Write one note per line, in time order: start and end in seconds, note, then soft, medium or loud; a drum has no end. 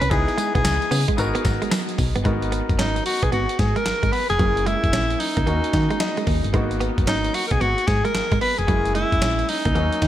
0.00 0.09 C2 medium
0.00 0.08 C#4 medium
0.00 0.12 B4 loud
0.00 closed hi-hat medium
0.10 0.25 C#2 loud
0.10 1.15 B3 medium
0.10 1.16 D#4 medium
0.10 1.16 E4 medium
0.10 0.55 G#4 loud
0.10 1.17 G#4 medium
0.10 kick loud
0.10 closed hi-hat medium
0.10 cowbell medium
0.28 muted clean electric guitar stroke soft
0.28 closed hi-hat medium
0.38 0.50 G#3 medium
0.38 closed hi-hat medium
0.38 tambourine medium
0.55 0.63 B1 medium
0.55 0.62 B3 medium
0.55 1.05 G#4 medium
0.55 kick loud
0.55 closed hi-hat medium
0.64 0.79 C#2 loud
0.64 muted clean electric guitar stroke soft
0.64 snare loud
0.64 clap medium
0.64 closed hi-hat medium
0.64 tambourine medium
0.64 cowbell medium
0.82 closed hi-hat medium
0.91 1.06 C#3 medium
0.91 1.03 B3 medium
0.91 open hi-hat medium
0.91 tambourine medium
1.08 1.15 G#3 medium
1.08 kick medium
1.08 closed hi-hat medium
1.17 1.32 G#1 loud
1.17 2.22 B3 medium
1.17 2.23 D#4 medium
1.17 2.23 F#4 medium
1.17 2.24 A#4 medium
1.17 closed hi-hat medium
1.17 tambourine medium
1.17 cowbell medium
1.35 1.42 B3 medium
1.35 closed hi-hat medium
1.44 1.59 G#1 loud
1.44 muted clean electric guitar stroke soft
1.44 kick loud
1.44 snare medium
1.44 closed hi-hat medium
1.44 tambourine medium
1.44 cowbell medium
1.62 1.69 G#3 medium
1.62 closed hi-hat medium
1.71 1.83 F#3 medium
1.71 snare loud
1.71 clap medium
1.71 closed hi-hat medium
1.71 tambourine medium
1.71 cowbell medium
1.89 closed hi-hat medium
1.98 2.13 B1 loud
1.98 muted clean electric guitar stroke soft
1.98 kick medium
1.98 open hi-hat medium
1.98 tambourine medium
2.16 2.24 G1 medium
2.16 2.22 B3 medium
2.16 closed hi-hat medium
2.24 2.62 G#1 loud
2.24 2.37 G#3 medium
2.24 4.35 B3 medium
2.24 4.35 D#4 medium
2.24 4.36 F#4 medium
2.24 4.36 A#4 medium
2.24 kick loud
2.24 closed hi-hat medium
2.42 muted clean electric guitar stroke soft
2.42 closed hi-hat soft
2.52 2.64 B3 medium
2.52 closed hi-hat medium
2.69 2.77 F#1 medium
2.69 kick loud
2.69 closed hi-hat medium
2.79 3.01 G#1 medium
2.79 2.91 C#4 medium
2.79 3.04 D#4 medium
2.79 snare loud
2.79 clap medium
2.79 closed hi-hat medium
2.96 muted clean electric guitar stroke soft
2.96 closed hi-hat medium
3.06 3.25 F#4 medium
3.06 open hi-hat medium
3.22 3.31 B1 medium
3.22 3.30 B3 medium
3.22 3.32 G#4 medium
3.22 kick medium
3.22 closed hi-hat medium
3.32 3.47 G#1 loud
3.32 3.44 B3 medium
3.32 3.61 F#4 medium
3.32 closed hi-hat medium
3.49 closed hi-hat medium
3.59 3.73 G#2 loud
3.59 3.78 G#4 medium
3.59 muted clean electric guitar stroke soft
3.59 kick medium
3.59 snare medium
3.59 closed hi-hat medium
3.76 3.83 G#3 medium
3.76 4.14 A#4 medium
3.76 closed hi-hat medium
3.86 3.93 G#1 medium
3.86 muted clean electric guitar stroke soft
3.86 snare medium
3.86 clap medium
3.86 closed hi-hat medium
4.03 4.11 G#1 medium
4.03 4.10 G#3 medium
4.03 kick medium
4.03 closed hi-hat medium
4.12 4.25 B3 medium
4.12 4.29 B4 loud
4.12 open hi-hat medium
4.30 4.38 F1 medium
4.30 4.68 G#4 loud
4.30 closed hi-hat medium
4.38 4.76 F#1 loud
4.38 4.51 F#3 medium
4.38 5.44 A#3 medium
4.38 5.44 C#4 medium
4.38 5.45 E4 medium
4.38 5.45 G#4 medium
4.38 kick loud
4.38 closed hi-hat medium
4.57 muted clean electric guitar stroke soft
4.57 closed hi-hat soft
4.66 4.78 G#3 medium
4.66 5.21 E4 loud
4.66 closed hi-hat medium
4.84 4.92 F#1 medium
4.84 kick loud
4.84 closed hi-hat medium
4.93 5.16 A#1 medium
4.93 5.05 C#4 medium
4.93 snare loud
4.93 clap medium
4.93 closed hi-hat medium
5.10 muted clean electric guitar stroke soft
5.10 closed hi-hat medium
5.20 6.27 D#4 medium
5.20 open hi-hat medium
5.37 5.45 C#2 medium
5.37 5.44 A#3 medium
5.37 kick medium
5.37 closed hi-hat medium
5.46 5.61 D#2 loud
5.46 6.51 A#3 medium
5.46 5.59 A#3 medium
5.46 6.52 C#4 medium
5.46 6.52 D#4 medium
5.46 6.52 F#4 medium
5.46 closed hi-hat medium
5.64 closed hi-hat medium
5.73 5.88 D#3 loud
5.73 muted clean electric guitar stroke soft
5.73 kick loud
5.73 snare medium
5.73 closed hi-hat medium
5.90 5.97 G#3 medium
5.90 closed hi-hat medium
6.00 6.50 D#5 medium
6.00 muted clean electric guitar stroke soft
6.00 snare loud
6.00 clap medium
6.00 closed hi-hat medium
6.17 6.24 G#3 medium
6.17 closed hi-hat medium
6.27 6.41 D#2 medium
6.27 6.39 A#3 medium
6.27 kick medium
6.27 open hi-hat medium
6.44 6.52 G1 medium
6.44 closed hi-hat medium
6.53 6.90 G#1 loud
6.53 6.66 G#3 medium
6.53 8.64 A#3 medium
6.53 8.64 B3 medium
6.53 8.64 D#4 medium
6.53 8.65 F#4 medium
6.53 kick loud
6.53 closed hi-hat medium
6.71 muted clean electric guitar stroke soft
6.71 closed hi-hat soft
6.80 6.93 B3 medium
6.80 closed hi-hat medium
6.98 7.06 F#1 medium
6.98 kick loud
6.98 closed hi-hat medium
7.07 7.30 G#1 medium
7.07 7.19 C#4 medium
7.07 7.36 D#4 medium
7.07 snare loud
7.07 clap loud
7.07 closed hi-hat medium
7.24 muted clean electric guitar stroke soft
7.24 closed hi-hat soft
7.34 7.47 F#4 medium
7.34 open hi-hat medium
7.47 7.53 A#4 medium
7.47 closed hi-hat medium
7.51 7.59 B1 medium
7.51 7.58 B3 medium
7.51 7.63 G#4 medium
7.51 kick medium
7.61 7.75 G#1 loud
7.61 7.73 B3 medium
7.61 7.89 F#4 medium
7.61 closed hi-hat medium
7.78 closed hi-hat medium
7.87 8.02 G#2 loud
7.87 8.06 G#4 medium
7.87 muted clean electric guitar stroke soft
7.87 kick loud
7.87 snare medium
7.87 closed hi-hat medium
8.05 8.11 G#3 medium
8.05 8.41 A#4 loud
8.05 closed hi-hat medium
8.15 8.21 G#1 medium
8.15 muted clean electric guitar stroke soft
8.15 snare medium
8.15 clap medium
8.15 closed hi-hat medium
8.32 8.40 G#1 medium
8.32 8.39 G#3 medium
8.32 kick medium
8.32 closed hi-hat medium
8.41 8.53 B3 medium
8.41 8.60 B4 loud
8.41 open hi-hat medium
8.59 8.67 F1 medium
8.59 8.95 G#4 loud
8.59 closed hi-hat medium
8.67 9.05 F#1 loud
8.67 8.80 F#3 medium
8.67 9.73 G#3 medium
8.67 9.73 A#3 medium
8.67 9.73 C#4 medium
8.67 9.74 E4 medium
8.67 kick loud
8.67 closed hi-hat medium
8.85 muted clean electric guitar stroke soft
8.85 closed hi-hat medium
8.95 9.07 G#3 medium
8.95 9.51 E4 loud
8.95 closed hi-hat medium
9.12 9.20 F#1 medium
9.12 kick loud
9.12 closed hi-hat medium
9.22 9.44 A#1 medium
9.22 9.34 C#4 medium
9.22 snare loud
9.22 clap medium
9.22 closed hi-hat medium
9.39 muted clean electric guitar stroke soft
9.39 closed hi-hat medium
9.49 10.07 D#4 medium
9.49 open hi-hat medium
9.65 9.74 C#2 medium
9.65 9.72 A#3 medium
9.65 kick medium
9.65 closed hi-hat medium
9.74 9.90 D#2 loud
9.74 10.07 F#3 medium
9.74 10.07 A#3 medium
9.74 9.87 A#3 medium
9.74 10.07 C#4 medium
9.74 10.07 D#4 medium
9.74 closed hi-hat medium
9.92 closed hi-hat medium
10.02 10.07 D#3 loud
10.02 muted clean electric guitar stroke soft
10.02 kick medium
10.02 snare medium
10.02 closed hi-hat medium